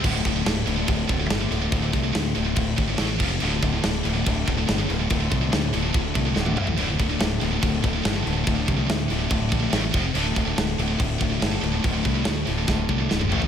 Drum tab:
CC |x-x-x-x-x-x-x-x-|x-x-x-x-x-x-x-x-|x-x-x-x-x-x-x-x-|x-x-x-x-x-x-----|
SD |----o-------o---|----o-------o---|----o-------o---|----o-------o---|
T1 |----------------|----------------|----------------|-------------o--|
T2 |----------------|----------------|----------------|--------------o-|
FT |----------------|----------------|----------------|---------------o|
BD |o-o-----o-o-----|o-o-----o-o---o-|--o-----o-o-----|o-o-----o-o-----|

CC |x-x-x-x-x-x-x-x-|x-x-x-x-x-x-x-x-|x-x-x-x-x-x-x-x-|x-x-x-x---------|
SD |----o-------o---|----o-------o---|----o-------o---|----o---o---o---|
T1 |----------------|----------------|----------------|----------------|
T2 |----------------|----------------|----------------|-------------o--|
FT |----------------|----------------|----------------|--------------oo|
BD |--o-----o-o-----|o-o-----o-o---o-|--o-----o-o-----|o-o-----o-o-----|